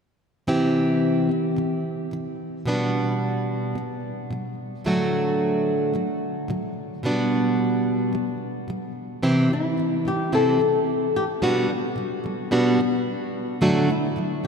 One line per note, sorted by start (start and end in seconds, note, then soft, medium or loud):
0.47 1.28 C3 medium
0.47 1.30 E3 medium
0.47 1.30 C4 medium
0.47 1.30 E4 medium
0.47 2.69 G4 medium
1.29 1.52 C3 soft
1.29 1.53 E3 soft
1.56 1.79 C3 medium
1.56 1.80 E3 medium
2.11 2.34 C3 soft
2.11 2.35 E3 medium
2.65 3.74 B2 medium
2.65 3.76 G3 medium
2.65 3.77 B3 medium
2.65 4.87 D4 medium
2.65 3.81 F#4 medium
3.75 3.98 B2 soft
3.75 4.00 G3 medium
4.31 4.53 B2 soft
4.31 4.54 G3 medium
4.84 5.92 A2 medium
4.84 5.94 D3 medium
4.84 5.95 F#3 medium
4.84 5.96 A3 medium
4.84 7.05 D4 medium
4.84 7.06 F#4 medium
5.94 6.17 A2 medium
5.94 6.17 D3 medium
5.94 6.18 F#3 medium
6.48 6.72 A2 soft
6.48 6.72 D3 medium
6.48 6.73 F#3 medium
7.03 8.11 B2 medium
7.03 8.14 G3 medium
7.03 8.14 B3 medium
7.03 8.15 D4 medium
7.03 8.15 F#4 medium
8.13 8.36 B2 soft
8.13 8.37 G3 medium
8.68 8.91 B2 soft
8.68 8.92 G3 medium
9.22 9.49 C3 medium
9.22 9.51 E3 medium
9.22 9.51 C4 medium
9.22 9.51 E4 medium
9.22 9.51 G4 medium
9.50 9.73 C3 soft
9.50 9.74 E3 soft
9.50 10.08 E4 medium
9.77 10.00 C3 soft
9.77 10.01 E3 soft
10.05 10.28 C3 soft
10.05 10.29 E3 soft
10.05 10.34 G4 medium
10.32 10.58 C3 medium
10.32 10.60 E3 medium
10.32 10.60 C4 medium
10.32 10.60 E4 medium
10.32 10.61 G4 medium
10.32 11.16 A4 medium
10.59 10.82 C3 soft
10.59 10.83 E3 soft
11.16 11.24 G4 medium
11.42 11.67 B2 medium
11.42 11.69 G3 medium
11.42 11.70 B3 medium
11.42 11.70 D4 medium
11.42 11.70 F#4 medium
11.42 12.49 F#4 medium
11.69 11.92 B2 soft
11.69 11.93 G3 soft
11.96 12.19 B2 medium
11.96 12.20 G3 soft
12.24 12.47 B2 soft
12.24 12.48 G3 soft
12.51 12.78 B2 medium
12.51 12.79 G3 medium
12.51 12.79 B3 medium
12.51 12.80 D4 medium
12.51 12.80 F#4 medium
12.79 13.02 B2 soft
12.79 13.03 G3 medium
13.61 13.87 A2 medium
13.61 13.89 D3 medium
13.61 13.89 F#3 medium
13.61 13.89 A3 medium
13.61 13.89 D4 medium
13.61 13.89 F#4 medium
13.88 14.11 A2 soft
13.88 14.12 F#3 soft
13.88 14.46 E4 medium
14.16 14.39 A2 medium
14.16 14.39 D3 soft
14.16 14.40 F#3 soft
14.44 14.47 A2 soft